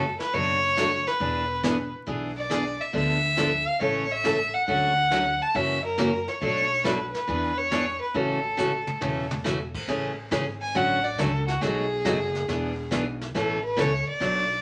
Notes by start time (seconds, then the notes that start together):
Already playing: F#1 A4
0.20 B4, snare
0.33 F#1 B2 F#3 A3 D4 F#4 C#5, brush sweep, kick
0.77 B2 F#3 A3 D4 F#4, snare, hi-hat pedal
1.07 B4, snare
1.20 E1 E3 B3 D4 G#4, brush sweep, kick
1.63 E3 B3 D4 G#4, snare, hi-hat pedal
2.07 B1 E3 B3 D4 G#4, brush sweep, kick
2.37 D5
2.50 E3 B3 D4 G#4, snare, hi-hat pedal
2.81 E5
2.93 D2 D3 F3 B3 D4 A4 E5, brush sweep, kick
3.37 D3 F3 B3 D4 A4, snare, hi-hat pedal
3.67 F5
3.80 A1 C#3 E3 A3 C#4 A4 C#5, brush sweep, kick
4.11 E5
4.24 C#3 E3 A3 C#4 A4, snare, hi-hat pedal
4.54 F#5
4.68 D2 D3 F#3 A3 C#4 F#4 F#5, brush sweep, kick
5.11 D3 F#3 A3 C#4 F#4, snare, hi-hat pedal
5.42 A5
5.54 F#2 C#3 E3 A#3 C#4 F#4 E5, brush sweep, kick
5.85 A#4
5.98 C#3 E3 A#3 C#4 F#4, snare, hi-hat pedal
6.28 C#5, snare
6.42 B1 B2 F#3 A3 D4 F#4 C#5, brush sweep, kick
6.84 B2 F#3 A3 D4 F#4 B4, snare, hi-hat pedal
7.13 B4, snare
7.27 E2 E3 B3 D4 G#4, brush sweep, kick
7.57 C#5
7.71 E3 B3 D4 G#4, snare, hi-hat pedal
8.01 B4
8.14 A1 C#3 E3 A3 C#4 F#4 A4, brush sweep, kick
8.57 C#3 E3 A3 C#4 F#4, hi-hat pedal, mid tom
8.87 mid tom
9.01 E1 C#3 E3 A3 C#4 F#4, mid tom
9.31 mid tom
9.44 C#3 E3 A3 C#4 F#4, snare, hi-hat pedal
9.75 kick, crash
9.88 A1 C#3 E3 A3 C#4 G#4, brush sweep, kick, snare
10.31 G#1 C#3 E3 A3 C#4 G#4, kick, snare, hi-hat pedal
10.62 G#5
10.75 A1 D3 F#3 A3 C#4 F#4 F#5, brush sweep, kick, snare
11.04 D5
11.18 C#2 D3 F#3 A3 C#4 F#4 A4, kick, snare, hi-hat pedal
11.48 F#4, snare
11.61 B1 B2 F#3 A3 D#4 F#4 G#4, brush sweep, kick, snare
12.05 F#1 B2 F#3 A3 D#4 F#4, kick, snare, hi-hat pedal
12.35 snare
12.48 E1 E3 B3 D4 G#4, brush sweep, kick, snare
12.91 B1 E3 B3 D4 G#4, kick, snare, hi-hat pedal
13.21 snare
13.34 A1 B2 E3 A3 C#4 A4, brush sweep, kick, snare
13.64 B4
13.77 C#2 B2 E3 A3 C#4 A4, kick, snare, hi-hat pedal
13.81 C#5
14.07 D5, muted upright bass stroke
14.20 B1 B2 F#3 A3 D4 F#4, brush sweep, kick, snare